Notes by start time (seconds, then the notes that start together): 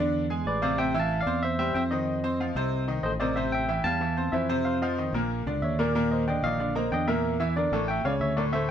Already playing: E2 D3 D4
0.00 D5
0.30 G#3 G#4 G#5
0.45 A1 B4 D5
0.62 C3 C4 C5 D5 F5
0.78 C3 C4 C5 E5 G5
0.94 E3 E4 E5
1.00 F5 A5
1.21 D5 F5
1.26 E2 C4 C5 C6
1.43 C5 E5
1.59 G3 G4 C5 E5 G5
1.75 F2 C4 C5 E5 G5 C6
1.91 D#3 D#4 C5 D#5
2.24 C4 C5 C6
2.40 F3 F4 F5
2.55 C2 C3 C4 C5
2.88 D#3 D#4 D#5
3.03 A1 A4 C5 D#5
3.20 C3 C4 A#4 C5 D5 D#5
3.36 C3 C4 C5 E5
3.52 E5 G5
3.68 E3 E4 E5
3.84 E2 G3 G4 F5 G5 A5
4.01 E3 E4 E5
4.17 C4 C5 C6
4.32 F2 E3 E4 C5 E5
4.49 C3 C4 C5
4.65 C5 F5
4.82 F3 F4 C5 D#5 F5
4.98 D#3 D#4 D#5
5.13 A#1 A#2 A#3 A#4
5.46 C#2 D3 D4 D5
5.62 D#2 C#5 E5
5.79 A#2 A#3 A#4 D5
5.95 A#2 A#3 A#4
6.11 C5 D#5
6.27 D3 D4 D5 D#5 G5
6.43 A#1 D#3 D#4 D5 D#5 F5
6.59 D3 D4 D5
6.75 A#3 A#4 C5 D#5 A#5
6.91 E2 D3 D4 D5 D#5 G5
7.07 A#2 A#3 A#4 E5
7.40 E3 E4 E5
7.49 E5
7.56 D3 D4 A#4 D5
7.72 A1 A2 A3 A4
7.88 E5 G5
8.04 C#2 C#3 C#4 C#5 D5 F5
8.20 D2 C#5 E5
8.37 A2 A3 A4 A#4 D5
8.52 A2 A3 A4 C5 E5